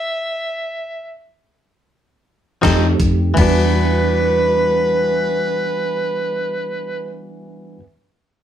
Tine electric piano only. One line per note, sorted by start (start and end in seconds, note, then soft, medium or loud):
2.62 3.37 A3 medium
2.62 3.37 C4 medium
2.62 3.37 D#4 medium
2.62 3.37 G4 medium
3.35 7.76 G3 medium
3.35 7.78 B3 medium
3.35 7.79 D4 medium
3.40 7.81 F#4 medium